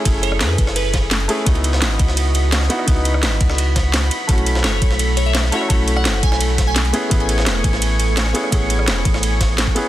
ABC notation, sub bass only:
X:1
M:4/4
L:1/8
Q:1/4=170
K:C#m
V:1 name="Sub bass" clef=bass
F,,,2 F,, F,,,4 z | C,,2 G,,, C,,4 z | C,,2 G,,, C,,4 z | B,,,2 F,,, B,,,4 z |
B,,,2 F,,, B,,,4 z | A,,,2 E,,, A,,,4 z | A,,,2 E,,, A,,,4 z |]